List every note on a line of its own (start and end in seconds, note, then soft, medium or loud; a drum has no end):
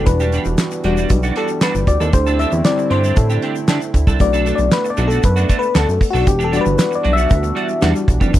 0.00 1.84 E3 medium
0.00 4.16 G3 loud
0.00 1.83 B3 medium
0.00 1.84 D4 medium
0.00 1.84 F#4 medium
0.06 0.39 E1 loud
0.06 0.80 B4 medium
0.06 muted clean electric guitar stroke soft
0.06 kick loud
0.06 closed hi-hat medium
0.06 shaker medium
0.20 0.32 G3 medium
0.20 0.33 D4 medium
0.20 0.34 G4 medium
0.20 shaker medium
0.32 0.46 G3 medium
0.32 0.46 D4 medium
0.32 0.46 G4 medium
0.32 closed hi-hat medium
0.32 shaker soft
0.45 0.56 E1 medium
0.45 muted clean electric guitar stroke soft
0.45 shaker soft
0.58 muted clean electric guitar stroke soft
0.58 snare loud
0.58 clap loud
0.58 closed hi-hat medium
0.58 shaker medium
0.71 muted clean electric guitar stroke soft
0.71 shaker medium
0.84 1.06 E1 medium
0.84 1.19 G3 medium
0.84 0.97 G3 medium
0.84 1.19 D4 medium
0.84 0.97 D4 medium
0.84 1.19 F#4 medium
0.84 0.96 F#4 medium
0.84 closed hi-hat medium
0.97 1.10 G3 medium
0.97 1.10 D4 medium
0.97 1.10 F#4 medium
0.97 shaker medium
1.09 1.32 B1 loud
1.09 muted clean electric guitar stroke soft
1.09 kick loud
1.09 closed hi-hat medium
1.09 shaker medium
1.23 1.34 G3 soft
1.23 1.35 D4 medium
1.23 1.36 F#4 medium
1.23 shaker soft
1.36 1.52 G3 medium
1.36 1.49 D4 medium
1.36 1.48 F#4 medium
1.36 1.63 A4 medium
1.36 closed hi-hat medium
1.48 muted clean electric guitar stroke soft
1.48 shaker soft
1.61 1.78 G3 medium
1.61 1.74 D4 medium
1.61 1.73 F#4 medium
1.61 1.89 B4 medium
1.61 snare loud
1.61 clap loud
1.61 closed hi-hat medium
1.61 shaker medium
1.75 1.85 G1 medium
1.75 muted clean electric guitar stroke soft
1.75 shaker medium
1.87 1.98 D2 medium
1.87 4.18 D3 medium
1.87 4.18 A3 medium
1.87 4.18 C4 medium
1.87 4.18 E4 medium
1.87 2.14 D5 medium
1.87 muted clean electric guitar stroke soft
1.87 kick medium
1.87 closed hi-hat medium
1.87 shaker medium
2.00 2.11 D#2 loud
2.00 2.13 C4 soft
2.00 2.13 D4 medium
2.00 2.13 A4 medium
2.00 shaker medium
2.13 2.46 D2 loud
2.13 2.40 C5 medium
2.13 muted clean electric guitar stroke soft
2.13 kick loud
2.13 closed hi-hat medium
2.13 shaker medium
2.27 2.39 C4 medium
2.27 2.39 D4 medium
2.27 2.40 A4 medium
2.27 shaker soft
2.39 2.52 C4 medium
2.39 2.52 D4 medium
2.39 2.52 A4 medium
2.39 2.66 E5 medium
2.39 closed hi-hat medium
2.39 shaker soft
2.52 2.63 E2 medium
2.52 muted clean electric guitar stroke soft
2.52 shaker medium
2.64 2.99 G3 medium
2.64 2.99 C4 medium
2.64 3.00 E4 medium
2.64 2.92 D5 loud
2.64 muted clean electric guitar stroke soft
2.64 snare loud
2.64 clap medium
2.64 closed hi-hat loud
2.64 shaker medium
2.78 muted clean electric guitar stroke soft
2.78 shaker soft
2.90 3.13 G2 medium
2.90 3.04 C4 medium
2.90 3.04 D4 medium
2.90 3.03 G4 medium
2.90 3.18 C5 loud
2.90 closed hi-hat medium
3.04 3.16 C4 medium
3.04 3.16 D4 medium
3.04 3.17 G4 medium
3.04 shaker medium
3.16 3.39 A2 medium
3.16 3.90 A4 medium
3.16 muted clean electric guitar stroke soft
3.16 kick loud
3.16 closed hi-hat medium
3.16 shaker medium
3.30 3.41 C4 soft
3.30 3.42 D4 medium
3.30 3.42 G4 medium
3.30 shaker medium
3.42 3.59 C4 medium
3.42 3.56 D4 medium
3.42 3.55 G4 loud
3.42 closed hi-hat medium
3.55 muted clean electric guitar stroke soft
3.55 shaker soft
3.68 3.79 D3 medium
3.68 3.85 C4 medium
3.68 3.82 D4 medium
3.68 3.81 G4 loud
3.68 snare loud
3.68 clap loud
3.68 closed hi-hat medium
3.68 shaker medium
3.82 muted clean electric guitar stroke soft
3.82 shaker medium
3.94 4.05 D2 medium
3.94 muted clean electric guitar stroke soft
3.94 kick medium
3.94 closed hi-hat medium
3.94 shaker medium
4.07 4.18 C2 medium
4.07 4.20 C4 medium
4.07 4.20 D4 medium
4.07 4.20 A4 medium
4.07 kick medium
4.07 shaker medium
4.20 4.53 B1 loud
4.20 4.94 A3 medium
4.20 6.25 A3 medium
4.20 8.39 B3 medium
4.20 4.94 D4 soft
4.20 6.25 D4 loud
4.20 4.94 F#4 medium
4.20 4.53 D5 medium
4.20 muted clean electric guitar stroke soft
4.20 kick medium
4.20 closed hi-hat medium
4.20 shaker medium
4.33 4.45 A3 medium
4.33 4.45 D4 medium
4.33 4.46 A4 medium
4.33 shaker medium
4.46 4.59 A3 medium
4.46 4.59 D4 medium
4.46 4.59 A4 medium
4.46 closed hi-hat medium
4.46 shaker medium
4.55 4.70 B1 medium
4.55 4.73 D5 medium
4.55 muted clean electric guitar stroke soft
4.55 shaker soft
4.71 4.90 B4 loud
4.71 muted clean electric guitar stroke soft
4.71 snare loud
4.71 clap medium
4.71 closed hi-hat medium
4.71 shaker medium
4.85 muted clean electric guitar stroke medium
4.85 shaker medium
4.90 5.08 D5 medium
4.97 5.20 B1 loud
4.97 5.11 A3 medium
4.97 5.10 D4 medium
4.97 5.10 F#4 medium
4.97 closed hi-hat medium
4.97 shaker medium
5.08 5.23 D4 medium
5.08 5.23 F#4 medium
5.08 5.25 A4 medium
5.08 shaker medium
5.12 5.22 A3 medium
5.23 5.45 F#2 loud
5.23 5.58 B4 medium
5.23 muted clean electric guitar stroke soft
5.23 kick loud
5.23 closed hi-hat medium
5.23 shaker medium
5.36 5.48 A3 soft
5.36 5.48 D4 medium
5.36 5.49 F#4 medium
5.36 shaker medium
5.49 5.65 A3 loud
5.49 5.62 D4 medium
5.49 5.61 F#4 medium
5.49 kick medium
5.49 closed hi-hat medium
5.49 shaker medium
5.59 5.76 B4 loud
5.59 muted clean electric guitar stroke soft
5.59 shaker soft
5.75 5.86 D2 medium
5.75 5.91 A3 medium
5.75 5.88 D4 medium
5.75 5.87 F#4 medium
5.75 6.08 A4 medium
5.75 snare loud
5.75 clap medium
5.75 closed hi-hat medium
5.75 shaker medium
5.88 5.99 F#2 medium
5.88 muted clean electric guitar stroke medium
5.88 shaker medium
6.01 muted clean electric guitar stroke soft
6.01 kick medium
6.01 open hi-hat medium
6.01 shaker medium
6.10 6.25 B1 medium
6.10 6.26 D4 medium
6.10 6.28 F#4 loud
6.10 6.26 A4 medium
6.15 6.26 A3 medium
6.15 shaker medium
6.26 6.60 E1 loud
6.26 8.39 E3 medium
6.26 8.39 G3 medium
6.26 8.39 D4 medium
6.26 8.32 F#4 medium
6.26 6.45 G4 medium
6.26 muted clean electric guitar stroke soft
6.26 kick loud
6.26 closed hi-hat loud
6.26 shaker medium
6.39 6.50 G3 medium
6.39 6.51 D4 medium
6.39 6.52 G4 medium
6.39 shaker soft
6.44 6.58 A4 medium
6.51 6.65 G3 medium
6.51 6.87 G3 medium
6.51 6.65 D4 medium
6.51 6.87 D4 soft
6.51 6.88 F#4 medium
6.51 6.64 G4 medium
6.51 closed hi-hat medium
6.51 shaker medium
6.57 6.61 D5 medium
6.61 6.77 B4 medium
6.61 muted clean electric guitar stroke soft
6.66 6.77 G1 loud
6.66 shaker medium
6.78 6.96 B4 medium
6.78 muted clean electric guitar stroke soft
6.78 snare loud
6.78 clap medium
6.78 closed hi-hat medium
6.78 shaker medium
6.91 muted clean electric guitar stroke medium
6.91 shaker medium
6.95 7.14 D5 medium
7.04 7.27 B1 medium
7.04 7.17 G3 medium
7.04 7.16 D4 medium
7.04 7.16 F#4 medium
7.04 closed hi-hat medium
7.13 7.30 F#4 medium
7.13 7.87 E5 loud
7.17 7.31 G3 medium
7.17 7.30 D4 medium
7.17 shaker medium
7.30 7.52 D2 loud
7.30 kick loud
7.30 closed hi-hat loud
7.30 shaker medium
7.43 muted clean electric guitar stroke soft
7.43 shaker soft
7.55 7.72 G3 medium
7.55 7.68 D4 medium
7.55 7.67 F#4 medium
7.55 closed hi-hat medium
7.69 muted clean electric guitar stroke medium
7.69 shaker soft
7.81 7.94 E2 loud
7.81 8.05 G3 soft
7.81 7.98 G3 medium
7.81 8.05 D4 soft
7.81 7.95 D4 loud
7.81 8.06 F#4 medium
7.81 7.94 F#4 medium
7.81 snare loud
7.81 clap loud
7.81 closed hi-hat medium
7.81 shaker medium
7.95 muted clean electric guitar stroke medium
7.95 shaker medium
8.08 8.19 B1 medium
8.08 muted clean electric guitar stroke soft
8.08 kick medium
8.08 closed hi-hat medium
8.08 shaker soft
8.20 8.32 F1 loud
8.20 8.32 G3 soft
8.20 8.33 D4 medium
8.20 8.33 G4 medium
8.20 kick medium
8.20 shaker medium
8.33 8.39 E1 loud
8.33 8.39 E4 medium
8.33 muted clean electric guitar stroke medium
8.33 kick loud
8.33 closed hi-hat medium
8.33 shaker medium